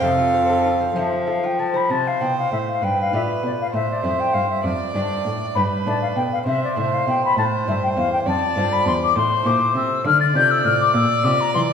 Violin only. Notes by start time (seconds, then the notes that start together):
0.01 F5
1.90 C5
2.82 B4
3.74 C5
4.64 D5
5.56 B4
6.46 C5
7.37 C5
8.26 D5
9.15 C5
10.04 D5